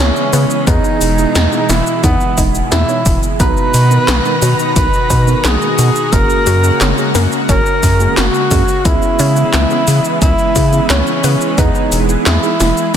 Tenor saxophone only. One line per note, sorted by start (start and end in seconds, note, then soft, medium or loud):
0.00 0.69 C#4 loud
0.67 1.71 D#4 loud
1.69 2.03 E4 loud
2.04 2.42 B3 loud
2.72 3.19 E4 loud
3.40 4.72 B4 loud
4.76 5.46 B4 loud
5.45 6.14 G#4 loud
6.13 7.22 A#4 loud
7.49 8.13 A#4 loud
8.17 8.87 F#4 loud
8.85 10.21 E4 loud
10.22 10.86 E4 loud
10.90 11.60 C#4 loud
11.58 11.99 D#4 loud
12.26 12.90 E4 loud